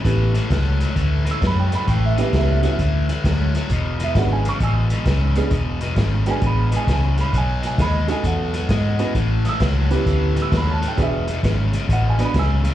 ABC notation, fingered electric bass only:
X:1
M:4/4
L:1/8
Q:"Swing" 1/4=132
K:Emix
V:1 name="Fingered electric bass" clef=bass
A,,,2 C,,2 D,,2 F,,2 | A,,,2 C,,2 D,,2 D,,2 | E,,,2 G,,,2 A,,,2 C,,2 | E,,,2 G,,,2 A,,,2 C,,2 |
B,,,2 ^D,,2 E,,2 G,,2 | A,,,2 C,,2 D,,2 ^D,,2 | E,,,2 G,,,2 A,,,2 C,,2 |]